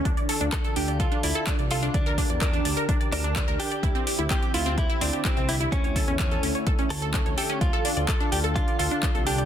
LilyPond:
<<
  \new Staff \with { instrumentName = "Synth pluck" } { \time 4/4 \key d \minor \tempo 4 = 127 d'16 d''16 a'16 d'16 d''16 a'16 d'16 d''16 a'16 d'16 d''16 a'16 d'16 d''16 a'16 d'16 | d''16 bes'16 d'16 d''16 bes'16 d'16 d''16 bes'16 d'16 d''16 bes'16 d'16 d''16 bes'16 d'16 d''16 | e'16 c'16 g'16 e'16 c'16 g'16 e'16 c'16 g'16 e'16 c'16 g'16 e'16 c'16 g'16 e'16 | cis'16 cis''16 a'16 cis'16 cis''16 a'16 cis'16 cis''16 a'16 cis'16 cis''16 a'16 cis'16 cis''16 a'16 cis'16 |
d''16 a'16 d'16 d''16 a'16 d'16 d''16 a'16 d'16 d''16 a'16 d'16 d''16 a'16 d'16 d''16 | }
  \new Staff \with { instrumentName = "Clean electric guitar" } { \time 4/4 \key d \minor r4 a'8 g'8 f'8 e'8 d'8 f'8 | d'4 d'4 r8 d'4 g'8~ | g'4 g'8 f'8 e'8 d'8 c'8 e'8 | cis'4 cis'4 r8 a'4 g'8 |
f'4 a'8 g'8 f'8 f'4 g'8 | }
  \new Staff \with { instrumentName = "Analog synth pad" } { \time 4/4 \key d \minor << { <d' f' a'>1 | <d' g' bes'>1 | <c' e'>1 | <a cis'>1 |
<d' f' a'>1 | } \\ { d1~ | d1~ | d1 | d1 |
d1 | } >> }
  \new Staff \with { instrumentName = "Analog synth bass" } { \clef bass \time 4/4 \key d \minor d,16 r8 d,16 r8 d,8. r16 d,16 r8 c,8. | d,8. e,8. d,16 r8. d,8. d,16 r8 | d,16 r8 d,16 r8 d,8. r16 d,16 r8 c,8. | d,8. e,8. d,16 r8. d,8. d,16 r8 |
d,16 r8 d,16 r8 d,8. r16 d,16 r8 c,8. | }
  \new DrumStaff \with { instrumentName = "Drums" } \drummode { \time 4/4 <hh bd>16 hh16 hho16 hh16 <hc hh bd>16 hh16 hho16 hh16 <hh bd>16 hh16 hho16 hh16 <hc hh bd>16 hh16 hho16 hh16 | <hh bd>16 hh16 <hho bd>16 hh16 <hc hh bd>16 hh16 hho16 hh16 <hh bd>16 hh16 hho16 hh16 <hc hh bd>16 hh16 hho16 hh16 | <hh bd>16 hh16 hho16 hh16 <hc hh bd>16 hh16 hho16 hh16 <hh bd>16 hh16 hho16 hh16 <hc hh bd>16 hh16 hho16 hh16 | <hh bd>16 hh16 <hho bd>16 hh16 <hc hh bd>16 hh16 hho16 hh16 <hh bd>16 hh16 hho16 hh16 <hc hh bd>16 hh16 hho16 hh16 |
<hh bd>16 hh16 hho16 hh16 <hc hh bd>16 hh16 hho16 hh16 <hh bd>16 hh16 hho16 hh16 <hc hh bd>16 hh16 hho16 hh16 | }
>>